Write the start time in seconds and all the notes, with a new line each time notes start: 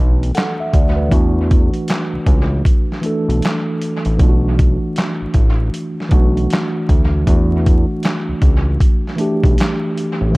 Already playing: B1 E3 A3 D4 F#4
0.23 closed hi-hat
0.35 A4 F#5, snare, clap, closed hi-hat
0.60 E5
0.73 D2 F#4 D5, kick, closed hi-hat
0.96 D4 B4
1.08 E2 E3 A3 D4, kick, closed hi-hat
1.13 F#4
1.51 kick, closed hi-hat
1.74 closed hi-hat
1.88 snare, clap, closed hi-hat
2.13 C#2
2.27 C#2, kick, closed hi-hat
2.65 kick, closed hi-hat
2.92 snare
3.01 E3 A3 D4, closed hi-hat
3.06 A4
3.29 B1, closed hi-hat
3.42 snare, clap, closed hi-hat
3.82 closed hi-hat
4.05 A1, closed hi-hat
4.18 B1 E3 A3 D4, kick, closed hi-hat
4.22 F4
4.29 F#4
4.59 kick, closed hi-hat
4.96 snare, clap, closed hi-hat
5.21 A1
5.34 A1, kick, closed hi-hat
5.74 closed hi-hat
6.00 snare
6.09 B1 E3 A3 D4, kick, closed hi-hat
6.14 F#4
6.37 closed hi-hat
6.50 snare, clap, closed hi-hat
6.89 D2, kick, closed hi-hat
7.24 E2 E3 A3 D4, kick, closed hi-hat
7.30 F#4
7.66 kick, closed hi-hat
8.03 snare, clap, closed hi-hat
8.28 C#2
8.42 C#2, kick, closed hi-hat
8.80 kick, closed hi-hat
9.07 snare
9.16 E3 A3 D4, closed hi-hat
9.21 G4
9.44 B1, kick, closed hi-hat
9.58 snare, clap, closed hi-hat
9.98 closed hi-hat
10.21 A1
10.31 E3 A3